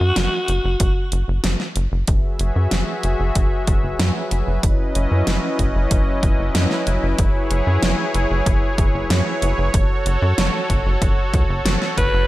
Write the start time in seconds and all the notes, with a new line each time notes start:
Already playing: F#4
0.01 F#2
0.16 F#1, snare, closed hi-hat
0.48 F#1, closed hi-hat
0.65 F#1
0.80 F#1, kick, closed hi-hat
1.12 F#1, closed hi-hat
1.28 F#1
1.44 F#1, snare, closed hi-hat
1.60 snare
1.76 F#1, closed hi-hat
1.92 F#1
2.08 F#1 F#3 F#4 G#4 B4 E5, kick, closed hi-hat
2.39 F#1, closed hi-hat
2.56 F#2
2.71 F#1, snare, closed hi-hat
3.03 F#1, closed hi-hat
3.20 F#1
3.35 F#1, kick, closed hi-hat
3.67 F#1, kick, closed hi-hat
3.84 F#1
3.99 F#2, snare, closed hi-hat
4.31 F#1, closed hi-hat
4.47 F#1
4.63 F#1 C#4 E4 D#5, kick, closed hi-hat
4.95 F#1, closed hi-hat
5.11 F#2
5.27 F#1, snare, closed hi-hat
5.59 F#1, kick, closed hi-hat
5.75 F#1
5.91 F#1, kick, closed hi-hat
6.23 F#1, kick, closed hi-hat
6.39 F#1
6.55 F#2, snare, closed hi-hat
6.71 snare
6.87 F#1, closed hi-hat
7.03 F#1
7.18 F#1 G#4 C#5, kick, closed hi-hat
7.51 F#1, closed hi-hat
7.67 F#2
7.83 F#1, snare, closed hi-hat
8.14 F#1, closed hi-hat
8.31 F#1
8.46 F#1, kick, closed hi-hat
8.78 F#1, kick, closed hi-hat
8.94 F#1
9.10 F#2, snare, closed hi-hat
9.42 F#1, closed hi-hat
9.58 F#1
9.74 F#1 F#4 A4, kick, closed hi-hat
10.06 F#1, closed hi-hat
10.22 F#2
10.38 F#1, snare, closed hi-hat
10.70 F#1, kick, closed hi-hat
10.86 F#1
11.02 F#1, kick, closed hi-hat
11.34 C#2, kick, closed hi-hat
11.49 F#1
11.65 F#1, snare, closed hi-hat
11.82 snare
11.97 F#1 B4, kick, closed hi-hat
12.14 F#1